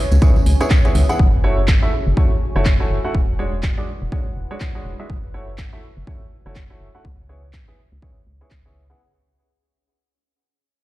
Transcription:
0.00 1.98 C#4 medium
0.00 1.98 G#4 medium
0.00 3.93 C#5 medium
0.12 0.18 C#2 loud
0.12 closed hi-hat soft
0.12 tambourine medium
0.22 0.34 B3 medium
0.22 0.34 E4 medium
0.22 0.34 G#4 medium
0.22 0.34 C#5 medium
0.22 kick loud
0.22 closed hi-hat medium
0.22 tambourine medium
0.36 tambourine soft
0.36 high conga medium
0.46 0.56 C#2 medium
0.46 open hi-hat loud
0.61 0.69 B3 medium
0.61 0.69 E4 medium
0.61 0.69 G#4 medium
0.61 0.69 C#5 medium
0.61 closed hi-hat soft
0.61 tambourine medium
0.70 kick loud
0.70 clap loud
0.70 closed hi-hat medium
0.70 tambourine medium
0.85 1.01 B3 medium
0.85 1.01 E4 medium
0.85 1.01 G#4 medium
0.85 1.01 C#5 medium
0.85 closed hi-hat soft
0.85 tambourine soft
0.95 1.04 C#2 medium
0.95 open hi-hat loud
0.95 high conga medium
1.09 1.18 B3 medium
1.09 1.18 E4 medium
1.09 1.18 G#4 medium
1.09 1.18 F#5 medium
1.09 closed hi-hat soft
1.09 tambourine medium
1.19 1.75 F#1 medium
1.19 3.93 F#4 medium
1.19 kick loud
1.44 1.56 A3 medium
1.44 1.56 E4 medium
1.44 1.56 F#4 medium
1.44 1.56 C#5 medium
1.68 kick loud
1.68 clap loud
1.82 1.91 A3 medium
1.82 1.91 E4 medium
1.82 1.91 F#4 medium
1.82 1.91 E5 medium
1.88 3.93 G#5 medium
2.07 2.14 F#1 loud
2.17 2.30 A3 medium
2.17 2.30 E4 medium
2.17 2.30 F#4 medium
2.17 2.29 C#5 medium
2.17 kick loud
2.56 2.85 F#1 loud
2.56 2.65 A3 medium
2.56 2.65 E4 medium
2.56 2.65 F#4 medium
2.56 2.65 C#5 medium
2.65 kick loud
2.65 clap loud
2.80 2.96 A3 medium
2.80 2.96 E4 medium
2.80 2.96 F#4 medium
2.80 2.96 C#5 medium
2.90 3.00 F#1 medium
3.04 3.13 A3 medium
3.04 3.13 E4 medium
3.04 3.13 F#4 medium
3.04 3.13 F#5 medium
3.15 3.70 E1 loud
3.15 5.89 E4 medium
3.15 kick loud
3.27 5.89 B4 loud
3.27 5.89 F#5 medium
3.39 3.51 G#3 medium
3.39 3.51 D4 medium
3.39 3.51 F#4 medium
3.39 3.51 C#5 medium
3.63 kick loud
3.63 clap loud
3.78 3.86 G#3 medium
3.78 3.86 D4 medium
3.78 3.86 F#4 medium
3.78 3.86 D5 medium
4.02 4.09 E1 loud
4.12 4.25 G#3 medium
4.12 4.25 D4 medium
4.12 4.25 F#4 medium
4.12 4.25 C#5 medium
4.12 kick loud
4.37 4.46 E1 medium
4.51 4.60 G#3 medium
4.51 4.60 D4 medium
4.51 4.60 F#4 medium
4.51 4.60 C#5 medium
4.60 kick loud
4.60 clap loud
4.75 4.91 G#3 medium
4.75 4.91 D4 medium
4.75 4.91 F#4 medium
4.75 4.91 C#5 medium
4.85 4.95 E1 medium
5.00 5.08 G#3 medium
5.00 5.08 D4 medium
5.00 5.08 F#4 medium
5.00 5.08 E5 medium
5.10 5.65 F#1 medium
5.10 7.84 F#4 medium
5.10 kick loud
5.34 5.47 A3 medium
5.34 5.47 E4 medium
5.34 5.47 F#4 medium
5.34 5.47 C#5 medium
5.44 9.00 C#5 medium
5.50 7.84 G#5 medium
5.58 kick loud
5.58 clap loud
5.73 5.82 A3 medium
5.73 5.82 E4 medium
5.73 5.82 F#4 medium
5.73 5.82 E5 medium
5.97 6.04 F#1 loud
6.07 6.20 A3 medium
6.07 6.20 E4 medium
6.07 6.20 F#4 medium
6.07 6.20 C#5 medium
6.07 kick loud
6.46 6.75 F#1 loud
6.46 6.55 A3 medium
6.46 6.55 E4 medium
6.46 6.55 F#4 medium
6.46 6.55 C#5 medium
6.55 kick loud
6.55 clap loud
6.70 6.86 A3 medium
6.70 6.86 E4 medium
6.70 6.86 F#4 medium
6.70 6.86 C#5 medium
6.80 6.90 F#1 medium
6.95 7.04 A3 medium
6.95 7.04 E4 medium
6.95 7.04 F#4 medium
6.95 7.04 F#5 medium
7.05 7.60 C#2 loud
7.05 9.00 C#4 medium
7.05 kick loud
7.21 9.00 G#4 medium
7.29 7.42 B3 medium
7.29 7.42 E4 medium
7.29 7.42 G#4 medium
7.29 7.42 C#5 medium
7.53 kick loud
7.53 clap loud
7.68 7.77 B3 medium
7.68 7.77 E4 medium
7.68 7.77 G#4 medium
7.68 7.77 E5 medium
7.92 7.99 C#2 loud
8.02 8.15 B3 medium
8.02 8.15 E4 medium
8.02 8.15 G#4 medium
8.02 8.15 C#5 medium
8.02 kick loud
8.27 8.44 C#2 medium
8.41 8.50 B3 medium
8.41 8.50 E4 medium
8.41 8.50 G#4 medium
8.41 8.50 C#5 medium
8.51 8.94 C#2 medium
8.51 kick loud
8.51 clap loud
8.65 8.81 B3 medium
8.65 8.81 E4 medium
8.65 8.81 G#4 medium
8.65 8.81 C#5 medium
8.90 8.99 B3 medium
8.90 8.99 E4 medium
8.90 8.99 G#4 medium
8.90 8.99 F#5 medium

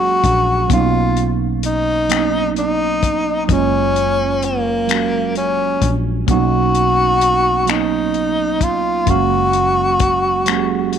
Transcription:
0.00 0.20 F#1 medium
0.00 0.59 F#3 medium
0.00 0.60 G#3 medium
0.00 0.60 A#3 medium
0.00 0.61 C#4 medium
0.00 0.71 F#4 loud
0.00 0.62 G#4 medium
0.24 0.66 A#1 medium
0.24 kick medium
0.24 closed hi-hat medium
0.68 3.45 B1 medium
0.68 1.99 F#3 medium
0.68 2.00 A#3 medium
0.68 2.00 B3 medium
0.68 2.01 C#4 medium
0.68 kick medium
0.68 closed hi-hat medium
0.73 2.01 D#4 medium
0.73 1.33 F4 medium
1.17 closed hi-hat soft
1.63 2.53 D#4 medium
1.63 closed hi-hat medium
2.08 3.39 F#3 medium
2.08 3.40 A#3 medium
2.08 3.40 B3 medium
2.08 3.41 C#4 medium
2.08 finger snap medium
2.08 closed hi-hat medium
2.13 2.18 D4 medium
2.20 3.45 D#4 medium
2.56 3.45 D#4 medium
2.56 closed hi-hat soft
3.03 kick medium
3.03 closed hi-hat medium
3.45 4.78 F#3 medium
3.45 4.79 G#3 medium
3.45 3.53 D#4 medium
3.45 kick medium
3.49 5.78 F#1 medium
3.49 4.80 A#3 medium
3.49 4.80 C#4 medium
3.49 4.46 C#4 medium
3.49 4.81 F4 medium
3.49 closed hi-hat medium
3.96 closed hi-hat medium
4.42 5.36 A#3 medium
4.42 closed hi-hat medium
4.87 6.18 F#3 medium
4.87 6.18 G#3 medium
4.87 6.19 A#3 medium
4.87 6.20 C#4 medium
4.87 closed hi-hat medium
4.91 6.20 F#4 medium
4.91 finger snap medium
5.35 5.98 C#4 medium
5.35 closed hi-hat soft
5.82 6.24 A#1 medium
5.82 kick medium
5.82 closed hi-hat medium
6.26 9.03 B1 medium
6.26 7.57 F#3 medium
6.26 7.58 A#3 medium
6.26 7.58 B3 medium
6.26 7.59 C#4 medium
6.26 kick medium
6.26 closed hi-hat medium
6.31 7.60 D#4 medium
6.31 7.72 F#4 loud
6.75 closed hi-hat medium
7.21 closed hi-hat medium
7.66 8.97 F#3 medium
7.66 8.97 A#3 medium
7.66 8.98 B3 medium
7.66 8.99 C#4 medium
7.66 finger snap medium
7.66 closed hi-hat medium
7.70 8.65 D#4 medium
7.70 8.99 D#4 medium
8.14 closed hi-hat soft
8.61 9.11 F4 medium
8.61 kick medium
8.61 closed hi-hat medium
9.06 10.99 F#1 medium
9.06 10.36 F#3 medium
9.06 10.37 G#3 medium
9.06 10.38 A#3 medium
9.06 10.38 C#4 medium
9.06 10.99 F#4 medium
9.06 kick medium
9.06 closed hi-hat medium
9.11 10.39 F5 medium
9.53 closed hi-hat soft
10.00 kick medium
10.00 closed hi-hat medium
10.46 10.99 F#3 medium
10.46 10.99 G#3 medium
10.46 10.99 A#3 medium
10.46 10.99 C#4 medium
10.46 finger snap medium
10.46 closed hi-hat medium
10.51 10.55 G4 medium
10.57 10.99 G#4 medium
10.93 closed hi-hat soft

